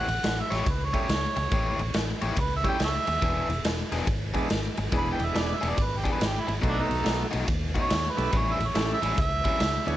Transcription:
Already playing: F#5
0.08 A1, muted overdriven electric guitar stroke, ride
0.24 A1, muted overdriven electric guitar stroke, snare, ride
0.41 E5
0.51 A1 A3 E4 G4 C#5, snare, ride
0.56 C#5
0.66 C#2, muted overdriven electric guitar stroke, kick, ride
0.71 B4
0.85 C#5
0.93 G3 A3 C#4 E4 G4 C#5, kick, ride
1.09 C#2, muted overdriven electric guitar stroke, snare, ride
1.36 C#2, muted overdriven electric guitar stroke, ride
1.51 A1 A3 E4 G4 C#5, kick, ride
1.79 A1, muted overdriven electric guitar stroke, ride
1.94 A1, muted overdriven electric guitar stroke, snare, ride
2.22 A1 A3 E4 G4 C#5, ride
2.36 C#2, muted overdriven electric guitar stroke, kick, ride
2.41 B4
2.56 E5
2.63 G3 A3 C#4 E4 G4 C#5, kick, ride
2.69 G5
2.80 C#2, muted overdriven electric guitar stroke, snare, ride
2.85 A4 C#5 E5
3.07 D#2, muted overdriven electric guitar stroke, ride
3.22 E1 E3 B3 D4 G#4, kick, ride
3.49 E1, muted overdriven electric guitar stroke, ride
3.64 E1, muted overdriven electric guitar stroke, snare, ride
3.92 E1 E3 B3 D4 G#4, snare, ride
4.07 G#1, muted overdriven electric guitar stroke, kick, ride
4.34 E3 G#3 B3 D4 E4 G#4, kick, ride
4.50 G#1, muted overdriven electric guitar stroke, snare, ride
4.77 G#1, muted overdriven electric guitar stroke, ride
4.92 E1 E3 G#3 B3 D4 E4 G#4, kick, ride
4.97 B5
5.12 G5
5.20 E1, muted overdriven electric guitar stroke, ride
5.25 E5
5.35 E1, muted overdriven electric guitar stroke, snare, ride
5.39 D5
5.55 E5
5.61 E1 E3 B3 D4 G#4, ride
5.69 D5
5.77 G#1, muted overdriven electric guitar stroke, kick, ride
5.83 B4
5.98 G4
6.04 E3 B3 D4 G#4, kick, ride
6.12 B4
6.20 G#1, muted overdriven electric guitar stroke, snare, ride
6.27 G4
6.41 E4
6.47 G#1, muted overdriven electric guitar stroke, ride
6.62 B1 B2 A3 B3 D#4 F#4 A4, kick, ride
6.68 D4
6.82 D#4
6.90 B1, muted overdriven electric guitar stroke, ride
7.04 B1, muted overdriven electric guitar stroke, snare, ride
7.31 B1 B2 A3 D#4 F#4, ride
7.47 D#2, muted overdriven electric guitar stroke, kick, ride
7.75 B2 A3 D#4 F#4, kick, ride
7.81 C#5
7.90 D#2, muted overdriven electric guitar stroke, snare, ride
8.10 B4
8.17 B1 A3 C#4 E4 G4 A4, muted overdriven electric guitar stroke, ride
8.33 A1 A2 G3 C#4 E4, kick, ride
8.38 C#5
8.53 E5
8.60 A1, muted overdriven electric guitar stroke, ride
8.67 C#5
8.74 A1 A3 C#4 E4 G4 A4, muted overdriven electric guitar stroke, snare, ride
8.93 E5
9.02 A1 A2 G3 C#4 E4, ride
9.18 C#2 E5, muted overdriven electric guitar stroke, kick, ride
9.44 A2 G3 C#4 E4, kick, ride
9.60 C#2, muted overdriven electric guitar stroke, snare, ride
9.86 D2 B3 D4 E4 G#4 C#5, muted overdriven electric guitar stroke, ride

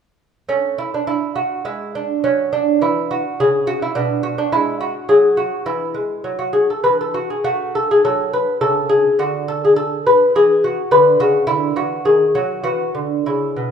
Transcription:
0.49 A3 C#4
0.78 E4
0.94 D4
1.07 E4
1.36 F#4
1.65 G#3 E4
1.95 D4
2.24 F#3 C#4
2.53 D4
2.81 E3 E4
3.11 F#4
3.40 C#3 G#4
3.67 F#4
3.82 E4
3.95 B2 D4
4.23 F#4
4.38 D4
4.52 G#3 E4
4.81 F#4
5.09 F#3 G#4
5.37 F#4
5.66 E3 E4
5.94 G#3
6.24 F#3
6.39 F#4
6.53 G#4
6.70 A4
6.84 E3 B4
7.01 A4
7.14 F#4
7.30 G#4
7.44 A3 F#4
7.75 A4
7.91 G#4
8.05 F#3 A4
8.33 B4
8.61 C#3 A4
8.89 G#4
9.19 D3 F#4
9.48 A4
9.65 G#4
9.76 A4
10.06 B4
10.36 E3 G#4
10.64 F#4
10.91 D3 B4
11.20 C#3 F#4
11.47 D3 E4
11.76 E3 F#4
12.05 D#3 G#4
12.35 F#3 F#4
12.64 E3 F#4
12.95 D3
13.26 C#3 E4
13.56 B2

